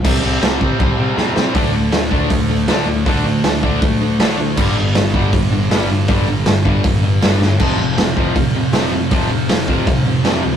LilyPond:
<<
  \new Staff \with { instrumentName = "Distorted electric guitar" } { \clef bass \time 4/4 \key g \major \tempo 4 = 159 <c g c'>8 <c g c'>8 <c g c'>8 <c g c'>8 <c g c'>8 <c g c'>8 <c g c'>8 <c g c'>8 | <d a d'>8 <d a>8 <d a>8 <d a d'>8 <d a>8 <d a>8 <d a d'>8 <d a>8 | <d a d'>8 <d a>8 <d a>8 <d a d'>8 <d a>8 <d a>8 <d a d'>8 <d a>8 | <g, d g>8 <g, d>8 <g, d>8 <g, d g>8 <g, d>8 <g, d>8 <g, d g>8 <g, d>8 |
<g, d g>8 <g, d>8 <g, d>8 <g, d g>8 <g, d>8 <g, d>8 <g, d g>8 <g, d>8 | <f, c f>8 <f, c>8 <f, c>8 <f, c f>8 <f, c>8 <f, c>8 <f, c f>8 <f, c>8 | <f, c f>8 <f, c>8 <f, c>8 <f, c f>8 <f, c>8 <f, c>8 <f, c f>8 <f, c>8 | }
  \new Staff \with { instrumentName = "Distorted electric guitar" } { \clef bass \time 4/4 \key g \major r1 | <d a d'>1 | <d a d'>1 | <g, d g>1 |
<g, d g>1 | <f, c f>1 | <f, c f>1 | }
  \new Staff \with { instrumentName = "Overdriven electric guitar" } { \clef bass \time 4/4 \key g \major <c g c'>8 <c g c'>8 <c g c'>8 <c g c'>8 <c g c'>8 <c g c'>8 <c g c'>8 <c g c'>8 | <d a d'>8 <d a>8 <d a>8 <d a d'>8 <d a>8 <d a>8 <d a d'>8 <d a>8 | <d a d'>8 <d a>8 <d a>8 <d a d'>8 <d a>8 <d a>8 <d a d'>8 <d a>8 | <g, d g>8 <g, d>8 <g, d>8 <g, d g>8 <g, d>8 <g, d>8 <g, d g>8 <g, d>8 |
<g, d g>8 <g, d>8 <g, d>8 <g, d g>8 <g, d>8 <g, d>8 <g, d g>8 <g, d>8 | <f, c f>8 <f, c>8 <f, c>8 <f, c f>8 <f, c>8 <f, c>8 <f, c f>8 <f, c>8 | <f, c f>8 <f, c>8 <f, c>8 <f, c f>8 <f, c>8 <f, c>8 <f, c f>8 <f, c>8 | }
  \new Staff \with { instrumentName = "Picked electric bass" } { \clef bass \time 4/4 \key g \major c,8 c,8 c,8 c8 c,8 c8 e,8 c8 | d,8 d,8 d,4 d,4 d,8 d,8 | d,8 d,8 d,4 d,4 d,8 d,8 | g,,8 g,,8 g,,4 g,,4 g,,8 g,,8 |
g,,8 g,,8 g,,4 g,,4 g,,8 g,,8 | f,,8 f,,8 f,,4 f,,4 f,,8 f,,8 | f,,8 f,,8 f,,4 f,,4 f,,8 d,8 | }
  \new DrumStaff \with { instrumentName = "Drums" } \drummode { \time 4/4 <cymc bd>4 <cymc sn>8 bd8 <cymc bd>4 sn8 sn8 | <hho bd>4 <hho sn>8 bd8 <hho bd>4 <hho sn>4 | <hho bd>4 <hho sn>8 bd8 <hho bd>4 <hho sn>4 | <cymc bd>4 <hho sn>8 bd8 <hho bd>4 <hho sn>4 |
<hho bd>4 <hho sn>8 bd8 <hho bd>4 <hho sn>8 sn8 | <cymc bd>4 <hho sn>8 bd8 <hho bd>4 <hho sn>4 | <hho bd>4 <hho sn>8 bd8 <hho bd>4 <hho sn>4 | }
>>